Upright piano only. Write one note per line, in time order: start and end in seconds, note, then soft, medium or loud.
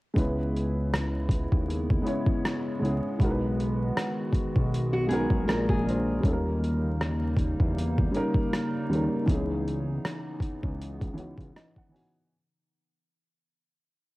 0.13 1.26 G#3 medium
0.13 1.27 B3 medium
0.13 1.27 C#4 medium
0.17 1.28 E4 medium
0.17 1.29 B4 medium
2.02 2.62 G#3 medium
2.02 2.62 B3 medium
2.02 2.63 C#4 medium
2.06 2.64 E4 medium
2.06 2.64 C#5 medium
2.79 3.10 G#3 medium
2.79 3.10 B3 medium
2.79 3.11 C#4 medium
2.84 3.12 E4 medium
2.84 3.12 G#4 medium
3.19 4.31 G#3 medium
3.19 4.31 B3 medium
3.19 4.32 D#4 medium
3.23 4.33 F#4 medium
3.23 3.29 A#4 medium
3.31 4.37 B4 medium
5.08 5.43 G#3 medium
5.08 5.47 B3 medium
5.08 5.48 D#4 medium
5.12 5.49 F#4 medium
5.12 5.49 A#4 loud
5.45 5.78 G#3 loud
5.45 5.78 A#3 medium
5.45 5.79 D4 medium
5.49 5.80 F4 medium
5.49 5.80 A#4 medium
5.84 6.14 G#3 medium
5.84 6.14 A#3 medium
5.84 6.15 D4 medium
5.88 6.16 F4 medium
5.88 6.16 C5 medium
6.21 7.33 G3 medium
6.21 7.34 A#3 medium
6.21 7.35 C#4 medium
6.25 7.36 D#4 medium
6.25 6.32 A4 medium
6.33 7.40 A#4 medium
8.11 8.70 G3 medium
8.11 8.71 A#3 medium
8.11 8.71 C#4 medium
8.15 8.72 D#4 medium
8.15 8.73 A#4 loud
8.89 9.18 G3 medium
8.89 9.19 A#3 medium
8.89 9.20 C#4 medium
8.94 9.20 D#4 medium
8.94 9.21 A#4 medium
9.26 10.38 E3 medium
9.26 10.38 B3 medium
9.26 10.39 C#4 medium
9.30 10.40 D#4 medium
9.30 10.41 G#4 medium
11.14 11.73 E3 medium
11.14 11.74 B3 medium
11.14 11.75 C#4 medium
11.18 11.75 D#4 medium
11.18 11.76 F#4 medium
11.56 11.76 D#5 medium
11.78 11.93 F#5 medium
11.89 12.20 E3 medium
11.89 12.21 B3 medium
11.89 12.21 C#4 medium
11.89 12.28 G#5 medium
11.93 12.22 D#4 medium
11.93 12.23 F#4 medium